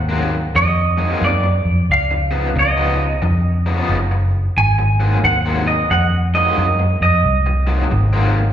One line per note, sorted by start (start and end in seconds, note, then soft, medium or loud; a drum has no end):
0.00 0.46 D#2 medium
0.00 0.56 F#5 loud
0.09 0.35 G#2 medium
0.09 0.35 F#3 medium
0.09 0.35 A#3 medium
0.09 0.34 C4 medium
0.55 1.14 F2 medium
0.55 1.24 D#5 medium
0.55 muted overdriven electric guitar stroke soft
0.97 1.10 G#2 medium
0.97 1.09 F#3 medium
0.97 1.09 A#3 medium
0.97 1.09 C4 loud
1.10 1.29 G#2 medium
1.10 1.28 F#3 medium
1.10 1.28 A#3 medium
1.10 1.28 C4 medium
1.22 1.60 F#2 medium
1.22 1.91 D5 medium
1.43 muted overdriven electric guitar stroke soft
1.65 1.86 F2 medium
1.89 2.48 C#2 medium
1.89 2.59 F5 medium
2.11 muted overdriven electric guitar stroke soft
2.31 2.47 C#3 medium
2.31 2.47 F3 medium
2.31 2.47 B3 medium
2.31 2.48 D#4 medium
2.56 3.15 C#2 medium
2.56 3.72 D#5 medium
2.56 muted overdriven electric guitar stroke soft
2.77 3.03 C#3 medium
2.77 3.03 F3 medium
2.77 3.03 B3 medium
2.77 3.03 D#4 medium
3.22 3.81 F2 medium
3.22 muted overdriven electric guitar stroke soft
3.66 3.77 C#3 medium
3.66 3.77 F3 medium
3.66 3.77 B3 medium
3.66 3.76 D#4 loud
3.72 4.31 C#5 medium
3.77 3.97 C#3 medium
3.77 3.96 F3 medium
3.77 3.96 B3 medium
3.77 3.96 D#4 medium
3.89 4.48 F#1 medium
4.11 muted overdriven electric guitar stroke medium
4.57 5.16 G#1 loud
4.57 5.24 G#5 loud
4.79 muted overdriven electric guitar stroke soft
5.00 5.15 G#2 medium
5.00 5.16 F#3 loud
5.00 5.16 A#3 loud
5.00 5.16 C4 loud
5.24 5.83 D#2 medium
5.24 5.36 F#5 medium
5.24 muted overdriven electric guitar stroke soft
5.46 5.72 G#2 medium
5.46 5.71 F#3 medium
5.46 5.71 A#3 medium
5.46 5.71 C4 medium
5.68 5.89 D#5 medium
5.91 6.50 F2 medium
5.91 6.03 F#5 medium
5.91 muted overdriven electric guitar stroke soft
6.34 6.46 G#2 medium
6.34 6.46 F#3 medium
6.34 6.45 A#3 medium
6.34 6.45 C4 medium
6.34 6.98 D#5 medium
6.46 6.65 G#2 medium
6.46 6.65 F#3 medium
6.46 6.64 A#3 medium
6.46 6.65 C4 medium
6.58 6.96 F#2 medium
6.79 muted overdriven electric guitar stroke medium
7.01 7.22 F2 medium
7.01 8.53 D#5 medium
7.24 7.83 C2 loud
7.46 muted overdriven electric guitar stroke soft
7.67 7.83 G#2 medium
7.67 7.83 F#3 medium
7.67 7.83 A#3 medium
7.67 7.84 C4 medium
7.91 8.51 G#1 medium
7.91 muted overdriven electric guitar stroke soft
8.13 8.39 G#2 medium
8.13 8.39 F#3 medium
8.13 8.39 A#3 medium
8.13 8.39 C4 medium